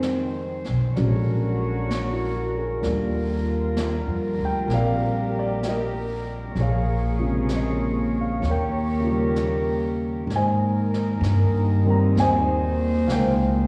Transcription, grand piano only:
0.00 0.93 D#3 soft
0.00 0.95 G3 soft
0.00 0.96 G#3 soft
0.00 0.99 C4 soft
0.00 0.94 C5 medium
0.00 0.94 D#5 soft
0.00 1.58 G#5 medium
0.95 2.80 D3 soft
0.95 2.83 F#3 soft
0.95 2.83 G#3 soft
0.95 2.83 C#4 medium
1.89 2.34 D4 soft
2.13 2.53 E4 soft
2.35 2.64 F#4 soft
2.58 2.91 G#4 soft
2.81 6.55 D3 soft
2.81 6.55 F3 soft
2.81 4.65 G3 soft
2.81 4.67 A#3 soft
4.45 4.70 G5 medium
4.67 6.54 G3 soft
4.67 6.55 A#3 soft
4.67 6.56 C4 soft
4.74 5.66 A#4 medium
4.74 5.38 D5 medium
4.74 5.37 F5 medium
5.39 5.63 D5 medium
5.67 6.54 G4 medium
5.67 6.54 A#4 medium
5.67 6.61 D#5 medium
6.60 8.40 G#4 medium
6.60 8.40 C#5 medium
6.60 7.48 F5 medium
7.19 8.42 C3 soft
7.19 8.42 C#3 soft
7.19 8.42 F3 soft
7.19 8.42 G#3 soft
7.56 8.18 D#5 medium
8.21 8.44 F5 medium
8.50 10.28 A#4 medium
8.50 10.28 C#5 medium
8.50 10.00 G5 medium
9.00 10.25 C#3 soft
9.00 10.27 F3 soft
9.07 10.29 G3 soft
9.07 10.31 A#3 medium
10.36 12.15 C5 medium
10.36 12.14 D#5 medium
10.36 11.94 G#5 medium
11.85 12.12 D#3 medium
11.85 12.12 G3 soft
11.85 12.12 A#3 soft
11.85 12.12 C4 medium
11.90 12.18 A#5 medium
12.20 13.11 C5 medium
12.20 13.67 D#5 medium
12.20 13.09 G#5 medium
13.08 13.10 F5 medium
13.12 13.67 A#4 medium
13.12 13.67 C5 medium
13.12 13.67 G5 medium

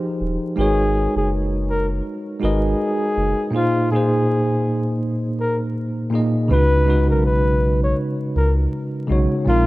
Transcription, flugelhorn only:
0.59 1.12 G#4 medium
1.17 1.30 G#4 medium
1.70 1.88 A#4 medium
2.44 3.50 G#4 medium
3.55 3.87 F4 loud
3.92 4.98 G#4 medium
5.40 5.58 A#4 medium
6.52 7.11 B4 loud
7.09 7.23 A#4 medium
7.26 7.85 B4 medium
7.84 7.97 C#5 medium
8.37 8.55 A#4 medium
9.48 9.67 F4 loud

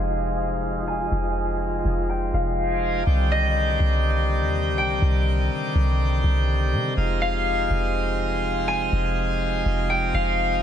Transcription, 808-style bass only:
0.00 1.08 F1 loud
1.11 1.82 F1 loud
1.85 2.32 F1 loud
2.33 3.04 F1 loud
3.07 3.77 C2 loud
3.80 4.42 C2 loud
4.41 4.73 D#2 medium
4.71 5.00 C2 loud
5.02 5.49 C2 loud
5.75 6.22 C2 loud
6.24 6.74 C2 loud
6.73 6.96 C3 loud
6.97 7.67 F1 loud
7.70 8.88 F1 loud
8.92 9.62 F1 loud
9.65 10.12 F1 loud
10.14 10.63 F1 loud

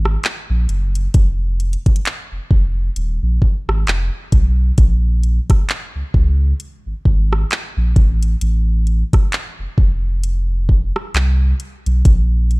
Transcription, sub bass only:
0.00 0.17 G#1 medium
0.50 0.66 A#1 loud
0.69 1.08 F#1 medium
1.14 1.76 F1 loud
2.32 2.39 F1 medium
2.51 2.90 F1 loud
2.96 3.19 D#1 loud
3.22 3.39 A#1 medium
3.68 3.84 G#1 medium
3.87 4.10 F1 medium
4.32 4.71 B1 medium
4.78 5.40 A#1 loud
5.95 6.03 C#2 soft
6.14 6.53 C#2 medium
6.86 6.94 G#1 soft
7.05 7.44 G#1 loud
7.77 7.93 A#1 loud
7.96 8.35 A1 loud
8.42 9.03 A1 loud
9.59 9.67 F1 medium
9.78 10.91 F1 medium
11.14 11.53 C2 loud
11.86 12.03 B1 loud
12.05 12.60 A#1 loud

